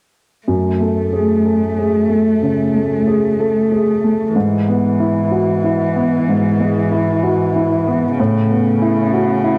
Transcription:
0.47 grand piano F#2, cello A3
0.81 grand piano A3
1.13 grand piano G#4
1.46 grand piano A4
1.78 grand piano G#4
2.10 grand piano A3
2.43 grand piano C#3
2.75 grand piano A3
3.07 grand piano G#4
3.40 grand piano A4
3.72 grand piano G#4
4.04 grand piano A3
4.36 grand piano G#2, cello E3
4.69 grand piano B3
5.00 grand piano E4
5.31 grand piano F#4
5.64 grand piano E4
5.96 grand piano B3
6.29 grand piano G#2
6.60 grand piano G#3
6.91 grand piano E4
7.23 grand piano F#4
7.56 grand piano E4
7.87 grand piano B3
8.18 grand piano A2, cello C#3
8.51 grand piano B3
8.82 grand piano E4
9.13 grand piano F#4
9.44 grand piano E4

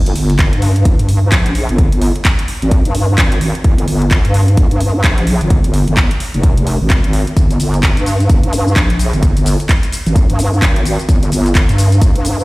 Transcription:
Already playing: wobble bass G1
0.06 closed hi-hat
0.16 wobble bass G1, open hi-hat
0.30 closed hi-hat
0.39 kick, clap, closed hi-hat
0.53 wobble bass G2, closed hi-hat
0.62 open hi-hat
0.76 closed hi-hat
0.85 wobble bass G1, kick, closed hi-hat
0.99 wobble bass G2, closed hi-hat
1.09 open hi-hat
1.32 wobble bass A#1, kick, clap, closed hi-hat
1.46 closed hi-hat
1.55 open hi-hat
1.69 wobble bass G1, closed hi-hat
1.78 kick, closed hi-hat
1.92 wobble bass G1, closed hi-hat
2.02 open hi-hat
2.16 closed hi-hat
2.25 kick, clap, closed hi-hat
2.39 closed hi-hat
2.48 open hi-hat
2.62 wobble bass G#1, closed hi-hat
2.71 kick, closed hi-hat
2.85 wobble bass G2, closed hi-hat
2.95 open hi-hat
3.18 wobble bass G#1, kick, clap, closed hi-hat
3.32 closed hi-hat
3.41 open hi-hat
3.55 closed hi-hat
3.64 wobble bass G1, kick, closed hi-hat
3.78 closed hi-hat
3.88 wobble bass G1, open hi-hat
4.02 closed hi-hat
4.11 kick, clap, closed hi-hat
4.25 wobble bass G2, closed hi-hat
4.34 open hi-hat
4.48 closed hi-hat
4.57 wobble bass G1, kick, closed hi-hat
4.71 wobble bass G2, closed hi-hat
4.80 open hi-hat
5.04 wobble bass A#1, kick, clap, closed hi-hat
5.18 closed hi-hat
5.27 open hi-hat
5.41 wobble bass G1, closed hi-hat
5.50 kick, closed hi-hat
5.64 wobble bass G1, closed hi-hat
5.74 open hi-hat
5.88 wobble bass G1, closed hi-hat
5.97 kick, clap, closed hi-hat
6.11 closed hi-hat
6.20 open hi-hat
6.34 wobble bass F1, closed hi-hat
6.43 kick, closed hi-hat
6.57 closed hi-hat
6.67 open hi-hat
6.81 wobble bass G#1
6.90 kick, clap, closed hi-hat
7.04 closed hi-hat
7.13 open hi-hat
7.27 closed hi-hat
7.37 wobble bass G1, kick, closed hi-hat, shaker
7.51 closed hi-hat, shaker
7.60 wobble bass G1, open hi-hat, shaker
7.74 closed hi-hat, shaker
7.83 kick, clap, closed hi-hat, shaker
7.97 wobble bass G2, closed hi-hat, shaker
8.06 open hi-hat, shaker
8.20 closed hi-hat, shaker
8.30 wobble bass G1, kick, closed hi-hat, shaker
8.43 wobble bass G2, closed hi-hat
8.53 open hi-hat, shaker
8.68 shaker
8.76 wobble bass A#1, kick, clap, closed hi-hat, shaker
8.90 closed hi-hat
8.99 open hi-hat, shaker
9.13 wobble bass G1, closed hi-hat, shaker
9.23 kick, closed hi-hat, shaker
9.37 wobble bass G1, closed hi-hat, shaker
9.46 open hi-hat, shaker
9.60 closed hi-hat, shaker
9.69 kick, clap, closed hi-hat, shaker
9.83 closed hi-hat, shaker
9.92 open hi-hat, shaker
10.06 wobble bass G#1, closed hi-hat, shaker
10.16 kick, closed hi-hat, shaker
10.30 wobble bass G2, closed hi-hat
10.39 open hi-hat, shaker
10.54 shaker
10.62 wobble bass G#1, kick, clap, closed hi-hat, shaker
10.76 closed hi-hat
10.85 open hi-hat, shaker
10.99 closed hi-hat, shaker
11.09 wobble bass G1, kick, closed hi-hat, shaker
11.23 closed hi-hat, shaker
11.32 wobble bass G1, open hi-hat, shaker
11.46 closed hi-hat, shaker
11.55 kick, clap, closed hi-hat, shaker
11.69 wobble bass G2, closed hi-hat, shaker
11.78 open hi-hat, shaker
11.92 closed hi-hat, shaker
12.02 wobble bass G1, kick, closed hi-hat, shaker
12.16 wobble bass G2, closed hi-hat
12.25 open hi-hat, shaker
12.40 shaker

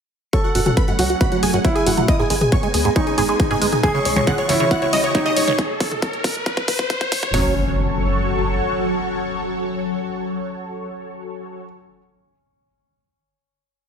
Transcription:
0.33 analog synth pad F#3 A3 C#4, acid bass F#3, grand piano A4, synth pluck C#5, supersaw synth C#6, kick, closed hi-hat, riser
0.44 synth pluck F#4, supersaw synth F#5
0.55 analog synth bass F#1, acid bass F#2, synth pluck F#4, supersaw synth F#5, open hi-hat
0.66 acid bass F#3, synth pluck F#4, supersaw synth F#5, closed hi-hat, mid tom
0.77 synth pluck B4, supersaw synth B5, kick, closed hi-hat
0.88 acid bass F#2, synth pluck F#4, supersaw synth F#5, closed hi-hat
0.99 analog synth bass C#2, acid bass F#3, grand piano F#4, synth pluck F#4, supersaw synth F#5, open hi-hat
1.10 synth pluck F#4, supersaw synth F#5, closed hi-hat
1.21 acid bass F#2, synth pluck B4, supersaw synth B5, kick, closed hi-hat
1.32 acid bass F#3, synth pluck F#4, supersaw synth F#5, closed hi-hat
1.43 analog synth bass F#1, synth pluck G#4, supersaw synth G#5, open hi-hat
1.54 acid bass F#2, synth pluck F#4, supersaw synth F#5, closed hi-hat
1.65 acid bass F#3, grand piano E4, synth pluck F#4, supersaw synth F#5, kick, closed hi-hat
1.75 synth pluck G#4, supersaw synth G#5, closed hi-hat
1.86 analog synth bass F#1, acid bass F#2, synth pluck F#4, supersaw synth F#5, open hi-hat
1.97 acid bass F#3, synth pluck F#4, supersaw synth F#5, closed hi-hat, mid tom
2.08 analog synth pad G#3 B3 D#5, synth pluck D#5, supersaw synth D#6, kick, closed hi-hat
2.19 acid bass G#2, synth pluck G#4, supersaw synth G#5
2.30 analog synth bass G#1, acid bass G#3, synth pluck G#4, supersaw synth G#5, open hi-hat
2.41 synth pluck G#4, supersaw synth G#5, closed hi-hat, mid tom
2.52 acid bass G#2, synth pluck C#5, supersaw synth C#6, kick, closed hi-hat
2.63 acid bass G#3, synth pluck G#4, supersaw synth G#5, closed hi-hat
2.74 analog synth bass D#2, synth pluck G#4, supersaw synth G#5, open hi-hat
2.85 acid bass G#2, synth pluck G#4, supersaw synth G#5, closed hi-hat
2.96 acid bass G#3, grand piano D#4, synth pluck C#5, supersaw synth C#6, kick, closed hi-hat
3.07 synth pluck G#4, supersaw synth G#5, closed hi-hat
3.18 analog synth bass G#1, acid bass G#2, synth pluck G#4, supersaw synth G#5, open hi-hat
3.29 acid bass G#3, synth pluck G#4, supersaw synth G#5, closed hi-hat
3.40 synth pluck G#4, supersaw synth G#5, kick, closed hi-hat
3.50 acid bass G#2, synth pluck G#4, supersaw synth G#5, closed hi-hat
3.61 analog synth bass G#1, acid bass G#3, synth pluck G#4, supersaw synth G#5, open hi-hat
3.72 synth pluck G#4, supersaw synth G#5, closed hi-hat, mid tom
3.83 acid bass C#2, analog synth pad C#3 E3, grand piano G#4, synth pluck G#5, supersaw synth G#6, kick, closed hi-hat
3.94 acid bass C#3, synth pluck C#5, supersaw synth C#6
4.05 analog synth bass C#2, synth pluck C#5, supersaw synth C#6, open hi-hat
4.16 acid bass C#2, synth pluck C#5, supersaw synth C#6, closed hi-hat, mid tom
4.27 acid bass C#3, synth pluck F#5, supersaw synth F#6, kick, closed hi-hat
4.38 synth pluck C#5, supersaw synth C#6, closed hi-hat
4.49 analog synth bass G#1, acid bass C#2, grand piano E4, synth pluck C#5, supersaw synth C#6, open hi-hat
4.60 acid bass C#3, synth pluck C#5, supersaw synth C#6, closed hi-hat
4.71 synth pluck F#5, supersaw synth F#6, kick, closed hi-hat
4.82 acid bass C#2, synth pluck C#5, supersaw synth C#6, closed hi-hat
4.93 analog synth bass C#2, acid bass C#3, synth pluck D#5, supersaw synth D#6, open hi-hat
5.04 synth pluck C#5, supersaw synth C#6, closed hi-hat
5.15 acid bass C#2, grand piano D#4, synth pluck C#5, supersaw synth C#6, kick, closed hi-hat
5.26 acid bass C#3, synth pluck D#5, supersaw synth D#6, closed hi-hat
5.36 analog synth bass C#2, synth pluck C#5, supersaw synth C#6, open hi-hat
5.47 acid bass C#2, synth pluck C#5, supersaw synth C#6, closed hi-hat, mid tom
5.59 kick, closed hi-hat
5.80 analog synth bass E1, kick, open hi-hat
5.91 closed hi-hat, mid tom
6.02 kick, closed hi-hat
6.13 closed hi-hat
6.24 analog synth bass B1, kick, open hi-hat
6.35 closed hi-hat
6.46 kick, closed hi-hat
6.57 kick, closed hi-hat
6.68 analog synth bass E1, kick, open hi-hat
6.79 kick, closed hi-hat
6.90 kick, closed hi-hat
7.01 kick, closed hi-hat
7.12 analog synth bass B1, kick, open hi-hat
7.23 kick, closed hi-hat, mid tom
7.34 analog synth bass F#1, acid bass F#3, analog synth pad F#3 F#4 A4 C#5, grand piano C#4, synth pluck C#5, supersaw synth C#6, snare, floor tom, open hi-hat, impact

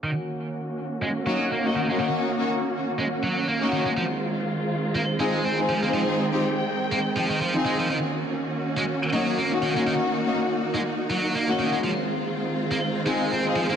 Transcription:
0.04 distorted electric guitar D#3, string section D#3 A#3 C#4 F#4
1.02 distorted electric guitar G#3
1.26 distorted electric guitar F#3, string section A#3 C#4 D#4 F#4
1.51 distorted electric guitar A#3
1.65 string section A#3 C#4 D#4 F#4
1.76 distorted electric guitar D#3
1.89 distorted electric guitar G#3, string section A#3 C#4 D#4 F#4
2.00 distorted electric guitar D#3
2.38 string section A#3 C#4 D#4 F#4
2.99 distorted electric guitar G#3
3.23 distorted electric guitar F#3
3.48 distorted electric guitar A#3
3.61 string section A#3 C#4 D#4 F#4
3.72 distorted electric guitar D#3
3.86 distorted electric guitar G#3
3.97 distorted electric guitar F3, string section G#3 C4 F4
4.95 distorted electric guitar A#3
5.20 distorted electric guitar G#3, string section C4 D#4 F4 G#4
5.44 distorted electric guitar C4
5.58 string section C4 D#4 F4 G#4
5.69 distorted electric guitar F3
5.83 distorted electric guitar A#3, string section C4 D#4 F4 G#4
5.93 distorted electric guitar F3, string section G5
6.32 string section C4 D#4 F4 G4
6.92 distorted electric guitar A#3
7.16 distorted electric guitar F3
7.30 distorted electric guitar D#3
7.41 distorted electric guitar F3
7.55 string section C4 D#4 F4 G#4
7.66 distorted electric guitar G#3
7.79 distorted electric guitar F3
7.90 distorted electric guitar D#3, string section A#3 C#4 F#4
8.78 distorted electric guitar G#3
9.13 distorted electric guitar F#3, string section A#3 C#4 D#4 F#4
9.38 distorted electric guitar A#3
9.52 string section A#3 C#4 D#4 F#4
9.62 distorted electric guitar D#3
9.76 distorted electric guitar G#3, string section A#3 C#4 D#4 F#4
9.87 distorted electric guitar D#3, string section D#4
10.26 string section A#3 C#4 D#4 F#4
10.75 distorted electric guitar G#3
11.10 distorted electric guitar F#3
11.35 distorted electric guitar A#3
11.48 string section A#3 C#4 D#4 F#4
11.59 distorted electric guitar D#3
11.73 distorted electric guitar G#3
11.84 string section D#3 G#3 C4 F4, distorted electric guitar F3
12.71 distorted electric guitar A#3
13.07 distorted electric guitar G#3, string section C4 D#4 F4 G#4
13.31 distorted electric guitar C4
13.45 string section C4 D#4 F4 G#4
13.56 distorted electric guitar F3
13.70 distorted electric guitar A#3, string section C4 D#4 F4 G#4

